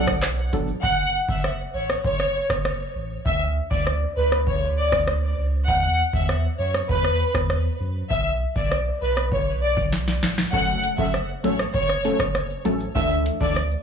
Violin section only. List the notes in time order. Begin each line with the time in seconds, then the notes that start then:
0.83 F#5
1.29 E5
1.74 C#5
2.05 C#5
3.26 E5
3.71 D5
4.17 B4
4.47 C#5
4.77 D5
5.68 F#5
6.14 E5
6.59 C#5
6.89 B4
8.11 E5
8.56 D5
9.02 B4
9.32 C#5
9.62 D5
10.53 F#5
10.98 E5
11.44 C#5
11.74 C#5
12.96 E5
13.41 D5